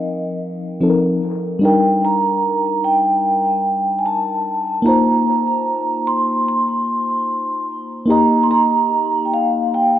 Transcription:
0.00 0.76 F3 medium
0.00 0.77 C4 medium
0.00 0.78 D#4 medium
0.00 0.79 A#4 medium
0.00 0.38 D#5 medium
0.81 1.62 F3 medium
0.81 1.62 C4 medium
0.81 1.62 D#4 soft
0.81 0.89 A4 soft
0.90 1.64 A#4 medium
1.59 4.80 G3 medium
1.59 4.81 D4 medium
1.63 4.82 D#4 medium
1.63 4.83 A#4 medium
1.63 2.01 G5 medium
2.05 2.87 A#5 medium
2.84 4.01 G5 medium
3.99 4.05 G#5 medium
4.06 4.88 A5 medium
4.82 8.03 A#3 medium
4.82 8.04 D#4 medium
4.82 8.05 F4 medium
4.82 6.10 A#5 loud
4.88 8.06 C5 medium
6.07 6.47 C6 loud
6.48 7.65 C6 loud
8.06 9.99 A#3 medium
8.06 9.99 D#4 medium
8.06 9.99 G4 medium
8.10 9.99 D#5 medium
8.10 8.44 A#5 loud
8.43 8.49 C6 medium
8.51 9.26 A#5 loud
9.25 9.31 G5 medium
9.34 9.69 F5 loud
9.74 9.99 G5 loud

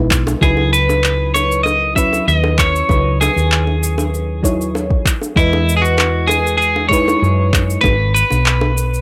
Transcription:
0.00 0.33 B1 medium
0.00 0.38 G#3 medium
0.00 0.38 D#4 medium
0.00 0.38 E4 medium
0.00 0.38 B4 medium
0.11 kick loud
0.11 clap medium
0.11 cabasa medium
0.27 high bongo medium
0.27 cabasa soft
0.41 2.19 C#2 medium
0.41 1.92 F#3 medium
0.41 1.93 D#4 medium
0.41 1.93 E4 medium
0.41 0.71 G#4 medium
0.41 1.94 B4 medium
0.41 kick loud
0.41 cabasa soft
0.57 high bongo soft
0.73 1.34 B4 medium
0.73 cabasa medium
0.89 high bongo medium
0.89 cabasa soft
1.04 clap medium
1.04 cabasa soft
1.34 1.63 C#5 medium
1.34 high bongo medium
1.34 cabasa medium
1.52 cabasa soft
1.63 1.96 D#5 loud
1.63 high bongo medium
1.63 cabasa soft
1.95 2.85 F#3 medium
1.95 2.85 C#4 medium
1.95 2.86 E4 medium
1.95 2.87 B4 loud
1.95 2.28 E5 loud
1.95 kick medium
1.95 cabasa medium
2.13 high bongo soft
2.13 cabasa soft
2.28 2.81 D#2 medium
2.28 2.59 D#5 loud
2.28 cabasa soft
2.44 high bongo medium
2.59 3.20 C#5 loud
2.59 kick medium
2.59 clap medium
2.59 cabasa medium
2.76 cabasa soft
2.89 3.28 C#2 medium
2.89 2.97 F#3 medium
2.89 2.97 D#4 medium
2.89 2.98 E4 medium
2.89 2.98 B4 medium
2.89 kick loud
2.89 high bongo soft
2.89 cabasa soft
3.21 4.40 G#4 medium
3.21 high bongo medium
3.21 cabasa medium
3.36 4.98 D#2 medium
3.36 cabasa soft
3.52 clap medium
3.52 cabasa soft
3.67 high bongo soft
3.83 cabasa medium
3.98 high bongo medium
3.98 cabasa soft
4.14 cabasa soft
4.43 5.04 F#3 loud
4.43 5.04 D#4 medium
4.43 5.04 E4 medium
4.43 5.05 C#5 loud
4.43 kick medium
4.43 high bongo soft
4.43 cabasa medium
4.61 cabasa soft
4.75 high bongo medium
4.75 cabasa soft
4.91 kick medium
5.05 kick medium
5.05 clap medium
5.05 cabasa medium
5.22 high bongo soft
5.22 cabasa soft
5.36 7.14 E2 loud
5.36 6.87 G#3 medium
5.36 5.74 E4 loud
5.36 6.88 E4 medium
5.36 6.89 B4 loud
5.36 6.88 D#5 medium
5.36 kick loud
5.36 cabasa soft
5.53 high bongo medium
5.69 cabasa medium
5.77 5.84 G#4 medium
5.82 6.30 F#4 loud
5.82 cabasa soft
5.97 clap medium
5.97 high bongo soft
5.97 cabasa soft
6.27 6.56 G#4 medium
6.27 high bongo medium
6.27 cabasa medium
6.47 cabasa soft
6.57 6.88 G#4 medium
6.62 cabasa soft
6.76 high bongo medium
6.89 7.80 G#3 medium
6.89 7.80 D#4 medium
6.89 7.81 E4 medium
6.89 7.81 C#5 loud
6.89 kick medium
6.93 7.81 B4 loud
6.93 cabasa medium
7.08 high bongo medium
7.08 cabasa soft
7.22 7.76 F#2 medium
7.22 cabasa soft
7.53 kick medium
7.53 clap medium
7.53 high bongo soft
7.53 cabasa medium
7.70 cabasa soft
7.81 8.22 G#1 loud
7.81 7.91 G#3 medium
7.81 7.92 D#4 medium
7.81 7.92 F#4 medium
7.81 8.13 B4 loud
7.81 7.92 B4 medium
7.81 kick loud
7.81 high bongo medium
7.81 cabasa soft
8.14 9.01 B4 loud
8.14 cabasa medium
8.30 9.01 B1 medium
8.30 high bongo soft
8.30 cabasa soft
8.46 clap medium
8.46 cabasa soft
8.61 high bongo medium
8.77 cabasa medium
8.94 cabasa soft

